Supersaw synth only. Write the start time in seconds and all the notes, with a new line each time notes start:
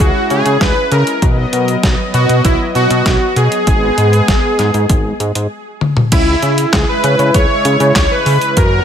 0.00 F#4
0.30 G#4
0.61 B4
0.92 A#4
2.14 F#4
2.45 E4
2.75 F#4
3.37 G#4
6.12 E4
6.73 G#4
6.89 B4
7.34 C#5
7.96 C#5
8.11 B4
8.57 A#4